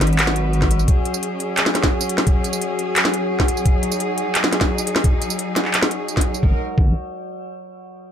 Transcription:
Already playing: synth drone F#3 F#4, cello section G#3 D#4 B4
0.01 wobble bass G#1, snare, closed hi-hat
0.07 closed hi-hat
0.13 closed hi-hat
0.19 clap, closed hi-hat
0.27 snare
0.36 closed hi-hat
0.53 closed hi-hat
0.62 kick, snare
0.71 closed hi-hat
0.79 tambourine
0.88 cello section F#3 C#4 G#4, kick, closed hi-hat
1.05 closed hi-hat
1.14 tambourine
1.23 closed hi-hat
1.40 closed hi-hat
1.57 clap, closed hi-hat
1.66 snare
1.75 snare, closed hi-hat
1.83 kick, snare
2.01 tambourine
2.09 closed hi-hat
2.18 snare
2.27 kick, closed hi-hat
2.44 closed hi-hat, tambourine
2.53 tambourine
2.62 closed hi-hat
2.79 closed hi-hat
2.96 clap, closed hi-hat
3.05 snare
3.14 closed hi-hat
3.40 kick, snare
3.48 closed hi-hat
3.57 tambourine
3.66 cello section D#4, kick, closed hi-hat
3.83 closed hi-hat
3.92 tambourine
4.00 closed hi-hat
4.18 closed hi-hat
4.35 clap, closed hi-hat
4.44 snare
4.53 snare, closed hi-hat
4.61 kick, snare
4.78 tambourine
4.87 closed hi-hat
4.96 snare
5.04 kick, closed hi-hat
5.22 closed hi-hat, tambourine
5.30 tambourine
5.39 closed hi-hat
5.56 snare, closed hi-hat
5.65 clap
5.74 clap, closed hi-hat
5.82 snare
5.91 closed hi-hat
6.08 closed hi-hat, tambourine
6.17 kick, snare
6.21 closed hi-hat
6.34 tambourine
6.43 wobble bass G#1, cello section G#3 D#4 A#4, kick
6.78 wobble bass G#1, kick

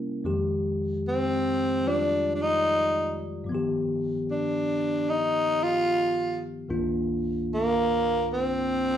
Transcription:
Already playing: tine electric piano C3 G3 A#3 C#4 E4
0.24 tine electric piano F2 D#3 F3 G#3 G4
1.08 tenor saxophone C4
1.85 tine electric piano F3 G3 F4 D5, tenor saxophone D4
2.35 tenor saxophone D4
2.42 tenor saxophone D#4
3.44 tine electric piano G2 F3
3.49 tine electric piano D#3 B3
3.55 tine electric piano G4
4.31 tenor saxophone D4
5.09 tenor saxophone D#4
5.63 tenor saxophone F4
6.69 tine electric piano C2 G2 D#3 A#3 D4 F4
7.54 tenor saxophone A#3
8.33 tenor saxophone C4

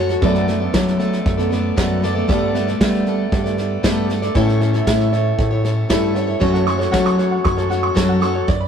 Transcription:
Already playing: upright piano F#1 F#2 F#3 A3 C#4 A4 C#5, picked electric bass F#2
0.09 steel-string acoustic guitar F#4 A4 C#5, snare
0.21 upright piano F#1 F#2 F#3 B3 D4 A4 D5, steel-string acoustic guitar F#2 F#3 A3 B3 A4 D5, picked electric bass F#2, kick, snare
0.35 snare
0.47 steel-string acoustic guitar A3 B3 A4 D5, snare
0.60 steel-string acoustic guitar A3 B3 A4 D5
0.73 steel-string acoustic guitar F#2 F#3 A3 B3 A4 D5, picked electric bass F#3, kick, snare
0.87 snare
0.98 steel-string acoustic guitar A3 B3 A4 D5, upright piano F#5, snare
1.13 snare
1.24 picked electric bass F#2, upright piano E5, kick, snare
1.37 steel-string acoustic guitar A3 B3 A4 D5, snare
1.51 steel-string acoustic guitar A3 B3 A4 D5, snare
1.76 steel-string acoustic guitar F#2 F#3 A3 B3 A4 D5, picked electric bass F#2, upright piano D5, kick, snare
2.02 steel-string acoustic guitar A3 B3 A4 D5, snare
2.15 steel-string acoustic guitar A3 B3 A4 D5
2.28 upright piano G1 G2 G3 B3 D4 A4 D5, picked electric bass G2, steel-string acoustic guitar G3 A3 B3 A4 D5, kick, snare
2.54 steel-string acoustic guitar A3 B3 A4 D5, snare
2.67 steel-string acoustic guitar A3 A4 D5, snare
2.80 steel-string acoustic guitar G3 A3 B3 A4 D5, picked electric bass G3, kick, snare
2.94 snare
3.05 steel-string acoustic guitar A3 B3 A4 D5, snare
3.32 picked electric bass G2, kick, snare
3.44 steel-string acoustic guitar A3 A4 D5, snare
3.57 steel-string acoustic guitar A3 B3 A4 D5, snare
3.83 picked electric bass G2, steel-string acoustic guitar G3 A3 B3 A4 D5, kick, snare
4.09 steel-string acoustic guitar A3 B3 A4 D5, snare
4.22 steel-string acoustic guitar A3 A4 D5, snare
4.35 upright piano A1 A2 A3 C#4 E4 C#5 E5, picked electric bass A2, steel-string acoustic guitar A3 C#4 E4 A4 C#5, kick, snare
4.49 snare
4.60 steel-string acoustic guitar C#4 E4 A4 C#5, snare
4.73 steel-string acoustic guitar E4 A4 C#5, snare
4.87 picked electric bass A2, steel-string acoustic guitar A3 C#4 E4 A4 C#5, kick, snare
5.00 snare
5.12 steel-string acoustic guitar C#4 E4 A4 C#5, upright piano C#5, snare
5.39 picked electric bass A2, upright piano E5, kick, snare
5.51 steel-string acoustic guitar E4 A4 C#5
5.63 steel-string acoustic guitar C#4 E4 A4 C#5, snare
5.89 picked electric bass G2, steel-string acoustic guitar A3 C#4 E4 A4 C#5, upright piano E5, kick, snare
6.14 steel-string acoustic guitar C#4 E4 A4 C#5, upright piano F#5, snare
6.27 steel-string acoustic guitar E4 A4 C#5
6.39 upright piano F#1 F#2 F#3 A3 C#4 A4 C#5, picked electric bass F#2, steel-string acoustic guitar F#3 C#4 F#4 A4 C#5, kick, snare
6.53 upright piano F#5, snare
6.65 steel-string acoustic guitar C#4 F#4 A4 C#5, upright piano C#6, snare
6.78 steel-string acoustic guitar F#4 A4 C#5, upright piano C#5, snare
6.91 steel-string acoustic guitar F#3 C#4 F#4 A4 C#5, picked electric bass F#3, upright piano F#5, kick, snare
7.06 upright piano C#6, snare
7.17 steel-string acoustic guitar C#4 F#4 A4 C#5, upright piano C#5, snare
7.31 upright piano F#5
7.44 picked electric bass F#2, upright piano C#6, kick, snare
7.57 steel-string acoustic guitar F#4 A4 C#5, upright piano C#5, snare
7.69 steel-string acoustic guitar C#4 F#4 A4 C#5, upright piano F#5, snare
7.83 upright piano C#6
7.95 picked electric bass F#2, steel-string acoustic guitar F#3 C#4 F#4 A4 C#5, upright piano C#5, kick, snare
8.09 upright piano F#5
8.20 steel-string acoustic guitar C#4 F#4 A4 C#5, upright piano C#6, snare
8.34 steel-string acoustic guitar F#4 A4 C#5, upright piano C#5
8.48 picked electric bass F#2, upright piano D5, kick, snare
8.60 upright piano B5

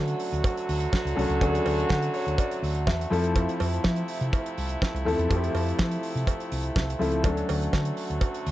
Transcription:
Already playing: fingered electric bass D3, french horn section D3 F#3 A3 F#4, grand piano F#3 A3 C#4 D4 A4
0.08 closed hi-hat
0.20 open hi-hat
0.32 fingered electric bass D2, closed hi-hat
0.44 kick, closed hi-hat, cowbell
0.57 closed hi-hat
0.69 fingered electric bass D2, open hi-hat
0.80 closed hi-hat
0.93 kick, snare, cowbell
1.05 fingered electric bass C#2, closed hi-hat
1.16 fingered electric bass C2, grand piano F#3 A3 C#4 D4 A4, open hi-hat
1.29 fingered electric bass C#2, closed hi-hat
1.40 fingered electric bass D2, grand piano F#3 A3 C#4 D4 G#4, kick, closed hi-hat, cowbell
1.48 grand piano A4
1.55 closed hi-hat
1.66 fingered electric bass D2, open hi-hat, cowbell
1.80 closed hi-hat
1.89 fingered electric bass D3, kick, snare, cowbell
2.02 closed hi-hat
2.14 grand piano C#5, open hi-hat
2.27 fingered electric bass D2, closed hi-hat
2.38 grand piano D5, kick, closed hi-hat, cowbell
2.51 closed hi-hat
2.63 fingered electric bass D2, open hi-hat
2.75 closed hi-hat
2.87 fingered electric bass E2, grand piano E5, kick, snare, cowbell
3.01 closed hi-hat
3.10 fingered electric bass F2, french horn section C3 F3 E4, grand piano F3 A3 C4 E4 A4, open hi-hat
3.24 closed hi-hat
3.36 kick, closed hi-hat, cowbell
3.49 closed hi-hat
3.60 fingered electric bass F2, open hi-hat, cowbell
3.74 closed hi-hat
3.84 fingered electric bass F3, kick, snare, cowbell
3.96 closed hi-hat
4.08 open hi-hat
4.21 fingered electric bass C3, closed hi-hat
4.33 kick, closed hi-hat, cowbell
4.46 closed hi-hat
4.58 fingered electric bass C2, open hi-hat
4.69 closed hi-hat
4.82 kick, snare, cowbell
4.94 fingered electric bass C2, closed hi-hat
5.05 fingered electric bass D#2, grand piano F3 A3 C4 E4 A4, open hi-hat
5.19 fingered electric bass E2, closed hi-hat
5.29 fingered electric bass F2, grand piano F3 A3 C4 E4 G4, kick, closed hi-hat, cowbell
5.37 grand piano A4
5.44 closed hi-hat
5.54 fingered electric bass F2, open hi-hat, cowbell
5.69 closed hi-hat
5.79 fingered electric bass F3, kick, snare, cowbell
5.91 closed hi-hat
6.03 open hi-hat
6.15 fingered electric bass C3, closed hi-hat
6.27 kick, closed hi-hat, cowbell
6.40 closed hi-hat
6.52 fingered electric bass C2, open hi-hat
6.63 closed hi-hat
6.76 fingered electric bass C2, kick, snare, cowbell
6.90 closed hi-hat
6.99 fingered electric bass C#2, grand piano F3 A3 C4 E4 A4, open hi-hat
7.12 closed hi-hat
7.22 fingered electric bass D2, french horn section D3 F#3 F#4, grand piano F#3 A3 C#4 D4 A4, kick, closed hi-hat, cowbell
7.37 closed hi-hat
7.49 fingered electric bass D2, open hi-hat, cowbell
7.62 closed hi-hat
7.73 fingered electric bass D3, kick, snare, cowbell
7.85 closed hi-hat
7.97 open hi-hat
8.10 fingered electric bass D2, closed hi-hat
8.21 kick, closed hi-hat, cowbell
8.34 closed hi-hat
8.46 fingered electric bass D2, open hi-hat

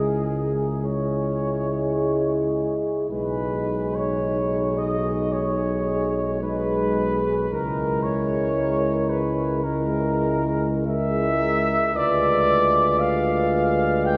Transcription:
Already playing: tuba C#2, trombone G#3, euphonium E4, french horn section G#4, trumpet section G#4
0.83 trombone G#3, euphonium E4, french horn section G#4, trumpet section C#5
3.10 tuba B1, trombone G#3, euphonium D#4, french horn section G#4, trumpet section B4
3.94 trumpet section C#5
4.76 trumpet section D#5
5.32 trumpet section C#5
6.41 trombone G#3, euphonium D#4, french horn section G#4, trumpet section B4
7.52 tuba C#2, trombone G#3, euphonium E4, trumpet section A#4, french horn section A#4
8.02 trumpet section C#5
9.09 trumpet section B4
9.64 trombone G#3, euphonium E4, trumpet section A#4, french horn section A#4
10.86 trombone G#3, euphonium E4, french horn section A#4, trumpet section E5
11.94 tuba D2, trombone G#3, euphonium F4, french horn section B4, trumpet section D5
12.99 trumpet section F5
14.05 trumpet section G5

